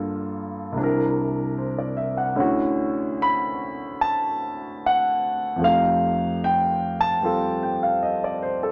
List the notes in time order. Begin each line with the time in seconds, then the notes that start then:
Already playing: G2 D3 A#3 F4 A4
0.72 C2 C3
0.78 D4 E4
0.83 A#4
1.58 C5
1.78 D5
1.97 E5
2.17 F#5
2.36 D2 D3 C#4 E4
2.40 F#4
3.22 B5
4.01 A5
4.86 F#5
5.56 F2 F3
5.61 A3 D#4 F5
5.67 G4
6.44 G5
7.01 A5
7.22 G3 C4 F4 A4
7.63 G5
7.83 F5
8.03 D#5
8.24 D5
8.42 C5
8.63 A4